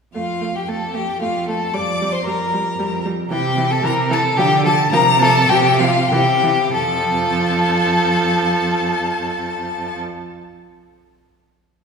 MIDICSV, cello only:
0, 0, Header, 1, 2, 480
1, 0, Start_track
1, 0, Key_signature, -1, "major"
1, 0, Tempo, 529101
1, 135, Time_signature, 3, 2, 24, 8
1, 3972, Tempo, 560748
1, 4932, Tempo, 616650
1, 9868, End_track
2, 0, Start_track
2, 0, Title_t, "Cello"
2, 0, Program_c, 0, 42
2, 123, Note_on_c, 0, 41, 42
2, 560, Note_off_c, 0, 41, 0
2, 609, Note_on_c, 0, 41, 42
2, 1042, Note_off_c, 0, 41, 0
2, 1105, Note_on_c, 0, 41, 46
2, 1532, Note_off_c, 0, 41, 0
2, 1589, Note_on_c, 0, 41, 50
2, 2008, Note_off_c, 0, 41, 0
2, 2060, Note_on_c, 0, 41, 51
2, 2479, Note_off_c, 0, 41, 0
2, 2527, Note_on_c, 0, 41, 57
2, 2947, Note_off_c, 0, 41, 0
2, 2999, Note_on_c, 0, 48, 71
2, 3426, Note_off_c, 0, 48, 0
2, 3483, Note_on_c, 0, 48, 72
2, 3911, Note_off_c, 0, 48, 0
2, 3967, Note_on_c, 0, 50, 78
2, 4383, Note_off_c, 0, 50, 0
2, 4437, Note_on_c, 0, 48, 89
2, 4870, Note_off_c, 0, 48, 0
2, 4923, Note_on_c, 0, 48, 86
2, 5343, Note_off_c, 0, 48, 0
2, 5413, Note_on_c, 0, 48, 78
2, 5842, Note_off_c, 0, 48, 0
2, 5900, Note_on_c, 0, 41, 78
2, 8425, Note_off_c, 0, 41, 0
2, 9868, End_track
0, 0, End_of_file